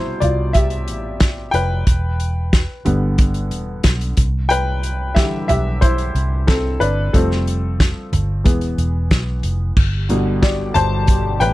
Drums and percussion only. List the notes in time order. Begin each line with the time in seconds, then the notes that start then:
0.22 closed hi-hat, floor tom
0.54 kick, closed hi-hat
0.70 closed hi-hat
0.88 closed hi-hat
1.20 kick, snare, closed hi-hat
1.54 closed hi-hat
1.87 kick, closed hi-hat
2.20 closed hi-hat
2.53 kick, snare, closed hi-hat
2.86 closed hi-hat, floor tom
3.18 kick, closed hi-hat
3.34 closed hi-hat
3.51 closed hi-hat
3.84 kick, snare, closed hi-hat
4.01 closed hi-hat
4.17 kick, closed hi-hat
4.50 closed hi-hat
4.83 closed hi-hat
5.16 kick, snare, closed hi-hat
5.49 closed hi-hat, floor tom
5.82 kick, closed hi-hat
5.98 closed hi-hat
6.16 closed hi-hat
6.48 kick, snare, closed hi-hat
6.81 closed hi-hat
7.14 kick, closed hi-hat
7.31 snare
7.47 closed hi-hat
7.80 kick, snare, closed hi-hat
8.13 closed hi-hat, floor tom
8.45 kick, closed hi-hat
8.61 closed hi-hat
8.78 closed hi-hat
9.11 kick, snare, closed hi-hat
9.43 closed hi-hat
9.77 kick, crash
10.10 closed hi-hat
10.43 kick, snare, closed hi-hat
10.75 closed hi-hat, floor tom
11.07 kick, closed hi-hat
11.41 closed hi-hat